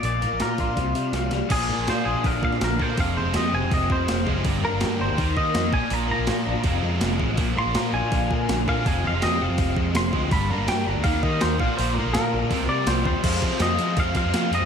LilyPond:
<<
  \new Staff \with { instrumentName = "Clean electric guitar" } { \time 4/4 \key f \dorian \tempo 4 = 164 << { r1 | aes'4 c''8 aes'8 bes'8 f''8 bes'8 c''8 | f''8 c''8 ees''8 aes''8 ees''8 c''4 r8 | r8 bes'4 c''4 ees''4 aes''8 |
bes''8 bes''2. r8 | r8 c'''8 bes''8 aes''2 f''8 | aes''8 f''8 ees''8 f''4 r8 c'''4 | b''8 bes''8 g''8 bes''8 f''8 ees''8 c''8 f''8 |
c''8 bes'8 bes'2 r4 | r1 | } \\ { d''4 bes'8 f'2 r8 | r1 | r1 | r1 |
r1 | r1 | r1 | r1 |
r2 r8 d''8 c''8 c''8~ | c''4 ees''4 f''8 f''4 ees''8 | } >> }
  \new Staff \with { instrumentName = "Overdriven electric guitar" } { \clef bass \time 4/4 \key f \dorian bes,8 bes8 f'8 d'8 c8 g8 f8 g8 | bes,8 bes8 f'8 d'8 d8 bes8 d8 bes8 | f,8 aes8 g'8 c'8 f8 aes8 f8 aes8 | g,8 bes8 g'8 d'8 ees8 bes8 ees8 bes,8 |
bes,8 bes8 f'8 d'8 f,8 aes8 f8 aes8 | bes,8 bes8 f'8 d'8 d8 bes8 d8 bes8 | f,8 aes8 g'8 c'8 f8 aes8 f8 aes8 | g,8 bes8 g'8 d'8 ees8 bes8 ees8 bes,8 |
bes,8 bes8 f'8 d'8 c8 g8 f8 g8 | <f, c f aes c' f'>8 <f, c f aes c' f'>8 <f, c f aes c' f'>8 <f, c f aes c' f'>8 <f, c f aes c' f'>8 <f, c f aes c' f'>8 <f, c f aes c' f'>8 <f, c f aes c' f'>8 | }
  \new Staff \with { instrumentName = "Overdriven electric guitar" } { \clef bass \time 4/4 \key f \dorian r1 | <bes, f bes d'>2.~ <bes, f bes d'>8 <bes, f bes d'>8 | <f, c f aes c'>2.~ <f, c f aes c'>8 <f, c f aes c'>8 | <g, d g bes d'>2 <ees g bes ees'>4. <bes, f bes d'>8~ |
<bes, f bes d'>2 <f, c f aes c'>2 | <bes, f bes d'>2.~ <bes, f bes d'>8 <bes, f bes d'>8 | <f, c f aes c'>2.~ <f, c f aes c'>8 <f, c f aes c'>8 | <g, d g bes d'>2 <ees g bes ees'>4. <bes, d f bes d'>8~ |
<bes, d f bes d'>2 <c f c' f' g'>2 | <f, c f aes c'>8 <f, c f aes c'>8 <f, c f aes c'>8 <f, c f aes c'>8 <f, c f aes c'>8 <f, c f aes c'>8 <f, c f aes c'>8 <f, c f aes c'>8 | }
  \new Staff \with { instrumentName = "Picked electric bass" } { \clef bass \time 4/4 \key f \dorian bes,,8 bes,16 bes,,16 bes,8 bes,,16 bes,16 c,8 c8 c,8 c,16 r16 | bes,,8 bes,16 bes,,16 bes,8 bes,,16 bes,16 bes,,8 bes,8 bes,,8 bes,8 | f,,8 f,16 f,,16 f,8 f,,16 f,16 f,,8 f,8 f,,8 ges,,8 | g,,8 g,16 g,,16 g,8 g,,16 d,16 ees,8 ees8 f,8 bes,,16 r16 |
bes,,8 bes,16 bes,,16 bes,8 bes,,16 bes,16 f,,8 f,8 f,,8 a,,8 | bes,,8 bes,16 bes,,16 bes,8 bes,,16 bes,16 bes,,8 bes,8 bes,,8 bes,8 | f,,8 f,16 f,,16 f,8 f,,16 f,16 f,,8 f,8 f,,8 d,8 | g,,8 g,16 g,,16 g,8 g,,16 d,16 ees,8 ees8 ees,8 bes,,16 r16 |
bes,,8 bes,16 bes,,16 bes,8 bes,,16 bes,16 c,8 c8 c,8 ees,16 r16 | f,8 f16 r16 f,8 f8 f,8 f16 f,16 f8 f,16 f,16 | }
  \new DrumStaff \with { instrumentName = "Drums" } \drummode { \time 4/4 hho8 hho8 <hho sn>8 <hho bd>8 <hho bd sn>8 hho8 <hho sn>8 <hho sn>8 | <cymc hho bd>4 <hho sn>4 <hho bd>8 bd16 sn16 <hho sn>8 bd8 | <hho bd>4 <hho sn>4 <hho bd>16 sn16 bd8 <hho sn>8 bd8 | <hho bd>4 <hho sn>4 <hho bd>8 bd8 <hho sn>8 bd8 |
hho4 <hho sn>4 <hho bd>4 <hho sn>8 bd8 | <hho bd>4 <hho sn>4 <hho bd>8 bd8 <hho sn>8 bd8 | <hho bd>4 <hho sn>4 <hho bd>8 bd8 <hho sn>8 bd8 | <hho bd>4 <hho sn>4 <hho bd>16 sn16 bd8 <hho sn>8 bd8 |
hho4 <hho sn>4 <hho bd>16 sn8. <hho sn>8 bd8 | <cymc hho bd>8 <hho bd>8 <hho sn>8 hho8 <hho bd>8 <hho bd>8 <hho sn>8 hho8 | }
>>